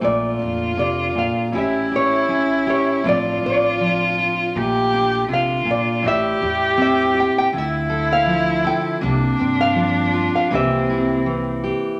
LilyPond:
<<
  \new Staff \with { instrumentName = "Nylon-string guitar" } { \time 4/4 \key bes \lydian \tempo 4 = 80 d''4 d''8 f''8 e''8 cis''4 cis''8 | d''8 d''2~ d''8 f''8 d''8 | e''4 e''8 g''16 g''16 e''8. f''8. g''8~ | g''8. f''4 f''16 e''4. r8 | }
  \new Staff \with { instrumentName = "Cello" } { \time 4/4 \key bes \lydian f'2 e'2 | f'2 g'4 f'4 | g'2 e'2 | d'2 c'4. r8 | }
  \new Staff \with { instrumentName = "Steel-string acoustic guitar" } { \time 4/4 \key bes \lydian << { a8 d'4. <cis' e' g'>8 g'4 g'8 | <f c' d' f'>8 d'4 f'8 a8 d'4. | e'8 g'4 g'8 f'8 a'4 a'8 | bes8 c'4 f'8 <e bes e' g'>8 e'4 g'8 | } \\ { bes,4 c8 bes,8 a,4 cis'4 | a,4 f4 bes,4 c8 bes,8 | a,4 c'4 d4 f4 | c4 f4 c4 e4 | } >> }
  \new Staff \with { instrumentName = "Upright bass" } { \clef bass \time 4/4 \key bes \lydian bes,,8 f,4. a,,2 | a,,8 a,,4. bes,,2 | a,,8 e,4. d,2 | c,8 g,4. c,2 | }
>>